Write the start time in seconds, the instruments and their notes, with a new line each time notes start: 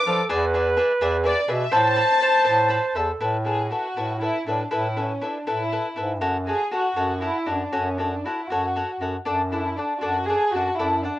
Already playing: violin section D6
0.06 bass clarinet F3, cavaquinho D4 B4 D5 F5, trumpet A4
0.29 bass clarinet E2, cavaquinho G#4 B4 D5 E5, trumpet B4
0.54 cavaquinho G#4 B4 D5 E5
0.77 cavaquinho G#4 B4 D5 E5
1.01 bass clarinet E2, cavaquinho G#4 B4 D5 E5
1.24 cavaquinho G#4 B4 D5 E5, violin section D5
1.48 bass clarinet B2, cavaquinho G#4 B4 D5 E5, violin section E5
1.71 bass clarinet A2, cavaquinho C5 E5 A5 B5, trumpet C5, violin section A5
1.95 cavaquinho C5 E5 A5 B5
2.19 cavaquinho C5 E5 A5 B5, trumpet C5
2.44 bass clarinet A2, cavaquinho C5 E5 A5 B5
2.68 cavaquinho C5 E5 A5 B5
2.94 bass clarinet E2, trumpet A4, cavaquinho C5 E5 A5 B5
3.20 bass clarinet A2, cavaquinho E4 A4 B4 E5
3.44 cavaquinho E4 A4 B4 E5, violin section G#4
3.71 cavaquinho E4 A4 B4 E5, violin section F#4
3.96 bass clarinet A2, cavaquinho E4 A4 B4 E5
4.21 cavaquinho E4 A4 B4 E5, violin section E4
4.46 bass clarinet A2, violin section D4, cavaquinho E4 A4 B4 E5
4.71 bass clarinet A2, cavaquinho E4 A4 B4 E5, violin section E4
4.96 violin section C#4, cavaquinho E4 A4 B4 E5
5.21 violin section D4, cavaquinho E4 A4 B4 E5
5.46 bass clarinet A2, cavaquinho E4 A4 B4 E5
5.50 violin section E4
5.72 cavaquinho E4 A4 B4 E5
5.96 bass clarinet G#2, cavaquinho E4 A4 B4 E5
6.21 bass clarinet F#2, cavaquinho F#4 A4 C#5 F#5
6.47 cavaquinho F#4 A4 C#5 F#5, violin section G#4
6.71 cavaquinho F#4 A4 C#5 F#5, violin section F#4
6.95 bass clarinet F#2, cavaquinho F#4 A4 C#5 F#5
7.21 violin section E4, cavaquinho F#4 A4 C#5 F#5
7.46 bass clarinet F#2, violin section D4, cavaquinho F#4 A4 C#5 F#5
7.73 bass clarinet F#2, violin section C#4, cavaquinho F#4 A4 C#5 F#5
7.98 violin section D4, cavaquinho F#4 A4 C#5 F#5
8.25 violin section E4, cavaquinho F#4 A4 C#5 F#5
8.50 bass clarinet F#2, violin section F#4, cavaquinho F#4 A4 C#5 F#5
8.76 cavaquinho F#4 A4 C#5 F#5
9.00 bass clarinet F#2, cavaquinho F#4 A4 C#5 F#5
9.25 bass clarinet F#2, cavaquinho D4 A4 D5 F#5
9.52 cavaquinho D4 A4 D5 F#5, violin section E4
9.77 cavaquinho D4 A4 D5 F#5, violin section D4
10.01 bass clarinet F#2, cavaquinho D4 A4 D5 F#5, violin section F#4
10.28 cavaquinho D4 A4 D5 F#5, violin section G#4
10.53 bass clarinet F#2, cavaquinho D4 A4 D5 F#5, violin section F#4
10.77 bass clarinet F#2, cavaquinho D4 A4 D5 F#5, violin section E4
11.03 violin section D4, cavaquinho D4 A4 D5 F#5